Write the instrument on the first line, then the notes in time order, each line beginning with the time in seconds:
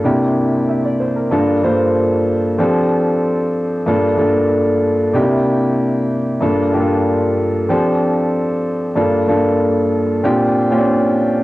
grand piano
0.04 C3 A#3 D4 E4 G4
0.69 E5
0.85 D5
1.00 C5
1.16 A#4
1.31 G2 A#3 D4 F4 A4
1.63 G2 A#3 D4 F4 C5
2.58 F3 C4 D4 G4 A4
3.86 G2 A#3 D4 F4 A4
4.17 G2 A3 D4 F4 A4
4.24 A#3
5.14 C3 A#3 D4 D#4 G4
5.21 E4
6.41 G2 A#3 D4 F4 A4
6.73 G2 A#3 D4 F4 G4
6.81 A4
7.69 F3 C4 D4 G4 A4
8.96 G2 A#3 D4 F4 A4
9.28 G2 A#3 D4 F4 A4
10.23 A#2 C4 D4 F4 G4
10.71 A#2 C4 C#4 F4 G4
10.78 D4